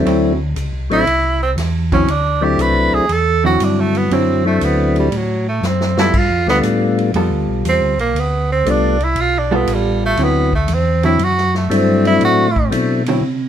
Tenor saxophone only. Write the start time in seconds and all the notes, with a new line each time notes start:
0.93 E4
1.43 C4
1.94 C#4
2.11 D4
2.44 G4
2.61 B4
2.94 G#4
3.13 A4
3.46 F#4
3.64 D4
3.80 A3
3.97 B3
4.14 C4
4.47 A3
4.65 B3
4.99 G3
5.17 F#3
5.49 A3
5.66 C4
5.99 E4
6.18 F4
6.50 B3
7.69 C4
8.00 A#3
8.20 B3
8.52 C4
8.70 D4
9.04 E4
9.21 F4
9.38 D4
9.55 B3
9.74 G3
10.06 A3
10.24 B3
10.55 A3
10.74 C4
11.05 E4
11.24 F#4
11.57 A3
11.74 C4
12.07 E4
12.25 F#4